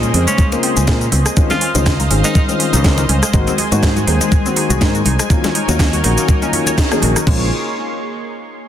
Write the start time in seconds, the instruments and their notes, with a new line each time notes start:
Already playing: fingered electric bass A#2, analog synth pad A#3 G#4 C5 D#5
0.03 synth arpeggio sound C#4, closed hi-hat, high conga, cabasa
0.14 fingered electric bass F2, grand piano C#3 G#3 A#3 C4 G#4, synth arpeggio sound C4, open hi-hat
0.27 synth arpeggio sound G#3, tenor saxophone C#4, closed hi-hat, muted conga, cabasa
0.38 synth arpeggio sound G#3, kick, closed hi-hat, high conga, cabasa
0.52 grand piano C#3 G#3 A#3 C4 F4, synth arpeggio sound A#3, closed hi-hat, muted conga, cabasa
0.63 synth arpeggio sound C4, open hi-hat
0.77 fingered electric bass C#2, synth arpeggio sound C#4, closed hi-hat, high conga, cabasa
0.87 fingered electric bass A#2, grand piano C#3 G#3 A#3 C4 A#4, synth arpeggio sound G#3, kick, snare, closed hi-hat, muted conga, cabasa
1.01 synth arpeggio sound C#4, closed hi-hat, cabasa
1.12 fingered electric bass C#2, synth arpeggio sound C4, open hi-hat, muted conga, high conga
1.26 synth arpeggio sound G#3, cross-stick, closed hi-hat, cabasa
1.37 grand piano D#3 G#3 C4 C#4 F4, synth arpeggio sound G#3, analog synth pad C5 D#5 F5, kick, closed hi-hat, cabasa
1.50 synth arpeggio sound C4, tenor saxophone F4, snare, closed hi-hat, muted conga, high conga, cabasa
1.61 synth arpeggio sound C#4, open hi-hat
1.75 fingered electric bass C#2, grand piano D#3 G#3 C4 C#4 F4, synth arpeggio sound D#4, closed hi-hat, muted conga, cabasa
1.86 synth arpeggio sound G#3, kick, cross-stick, snare, closed hi-hat, cabasa
2.00 synth arpeggio sound D#4, open hi-hat, high conga, cabasa
2.10 fingered electric bass G#1, grand piano D#3 G#3 C4 C#4 G#4, synth arpeggio sound C#4, open hi-hat, muted conga
2.24 synth arpeggio sound G#3, tenor saxophone D#4, closed hi-hat, cabasa
2.35 synth arpeggio sound G#3, tenor saxophone D#4, kick, closed hi-hat, muted conga, high conga, cabasa
2.48 grand piano D#3 G#3 C4 C#4 F4, synth arpeggio sound C4, closed hi-hat, cabasa
2.60 synth arpeggio sound C#4, open hi-hat
2.73 fingered electric bass C#2, synth arpeggio sound D#4, closed hi-hat, muted conga, high conga, cabasa
2.84 grand piano D#3 G#3 C4 C#4 A#4, synth arpeggio sound G#3, kick, snare, closed hi-hat, cabasa
2.98 synth arpeggio sound D#4, closed hi-hat, muted conga, cabasa
3.09 fingered electric bass C#2, synth arpeggio sound C#4, open hi-hat, high conga
3.23 synth arpeggio sound G#3, cross-stick, closed hi-hat, cabasa
3.33 fingered electric bass G#1, grand piano D#3 G#3 A#3 C4 F#4, analog synth pad G#3 G#4 G#5, synth arpeggio sound G#3, kick, closed hi-hat, muted conga, cabasa
3.47 synth arpeggio sound C4, closed hi-hat, high conga, cabasa
3.58 synth arpeggio sound D#4, open hi-hat, muted conga
3.71 fingered electric bass G#2, grand piano D#3 G#3 A#3 C4 F#4, synth arpeggio sound F#4, closed hi-hat, cabasa
3.83 synth arpeggio sound G#3, kick, cross-stick, snare, closed hi-hat, cabasa
3.96 synth arpeggio sound F#4, closed hi-hat, muted conga, high conga, cabasa
4.07 fingered electric bass D#2, grand piano D#3 G#3 A#3 C4 G#4, synth arpeggio sound D#4, open hi-hat
4.21 synth arpeggio sound G#3, closed hi-hat, muted conga, cabasa
4.31 synth arpeggio sound G#3, kick, closed hi-hat, high conga, cabasa
4.45 grand piano D#3 G#3 A#3 C4 F#4, synth arpeggio sound C4, closed hi-hat, cabasa
4.56 synth arpeggio sound D#4, open hi-hat, muted conga
4.70 fingered electric bass C2, synth arpeggio sound F#4, closed hi-hat, high conga, cabasa
4.81 fingered electric bass G#2, grand piano D#3 G#3 A#3 C4 A#4, synth arpeggio sound G#3, kick, snare, closed hi-hat, muted conga, cabasa
4.95 synth arpeggio sound F#4, closed hi-hat, cabasa
5.05 fingered electric bass C2, synth arpeggio sound D#4, open hi-hat, high conga
5.19 synth arpeggio sound G#3, cross-stick, closed hi-hat, muted conga, cabasa
5.30 grand piano D#3 F#3 A#3 C#4 F4, synth arpeggio sound A#3, analog synth pad D#4 A#4 C#5, kick, closed hi-hat, cabasa
5.44 synth arpeggio sound C#4, snare, closed hi-hat, muted conga, high conga, cabasa
5.55 synth arpeggio sound D#4, open hi-hat
5.68 fingered electric bass D#2, grand piano D#3 F#3 A#3 C#4 F4, synth arpeggio sound F#4, closed hi-hat, cabasa
5.79 synth arpeggio sound A#3, kick, cross-stick, snare, closed hi-hat, muted conga, cabasa
5.93 synth arpeggio sound F#4, open hi-hat, high conga, cabasa
6.04 fingered electric bass A#1, grand piano D#3 F#3 A#3 C#4 F#4, synth arpeggio sound D#4, open hi-hat, muted conga
6.18 synth arpeggio sound A#3, closed hi-hat, cabasa
6.28 synth arpeggio sound A#3, kick, closed hi-hat, high conga, cabasa
6.42 grand piano D#3 F#3 A#3 C#4 F4, synth arpeggio sound C#4, closed hi-hat, muted conga, cabasa
6.53 synth arpeggio sound C#4, open hi-hat, low conga
6.66 synth arpeggio sound C#5, closed hi-hat, muted conga, high conga, cabasa
6.78 synth arpeggio sound D#4, kick, snare, closed hi-hat, cabasa
6.91 grand piano D#3 F#3 A#3 C#4 G#4, synth arpeggio sound A#3, cross-stick, closed hi-hat, cabasa
7.02 fingered electric bass A#1, synth arpeggio sound F#4, open hi-hat, muted conga, high conga
7.16 synth arpeggio sound D#4, cross-stick, closed hi-hat, cabasa
7.26 fingered electric bass A#1, grand piano C#3 G#3 A#3 C4 F4, synth arpeggio sound G#3, analog synth pad A#3 G#4 C#5 C6, kick, crash